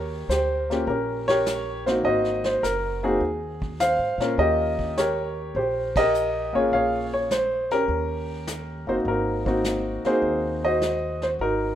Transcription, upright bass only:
0.00 0.25 D#2 medium
0.29 0.84 D2 medium
0.87 2.00 A#1 medium
2.04 2.59 G#1 medium
2.63 3.18 F#1 medium
3.20 3.95 D#2 medium
3.99 4.17 G#2 medium
4.18 4.37 A#2 medium
4.38 5.51 D#2 medium
5.55 6.50 A#1 medium
6.53 6.70 G#1 medium
6.72 7.85 A#1 medium
7.88 8.84 D#2 medium
8.87 9.04 G1 medium
9.05 10.00 G#1 medium
10.04 muted upright bass stroke soft
10.22 11.36 D#2 medium
11.39 11.75 G#1 medium

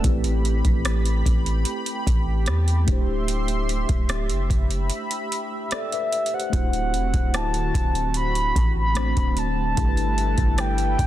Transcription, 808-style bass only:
0.04 0.63 A1 loud
0.65 1.23 A1 loud
1.26 1.65 A1 loud
2.07 2.49 A1 loud
2.47 2.86 E2 medium
2.88 3.85 D1 loud
3.89 4.31 D1 loud
4.30 4.49 F#1 medium
4.50 4.91 F#1 loud
6.53 6.95 D1 loud
6.94 7.13 E1 loud
7.14 7.72 D1 medium
7.75 8.52 D1 medium
8.56 9.14 A1 loud
9.17 9.75 D1 loud
9.77 10.36 G1 loud
10.38 10.96 G1 loud
10.99 11.07 G1 medium

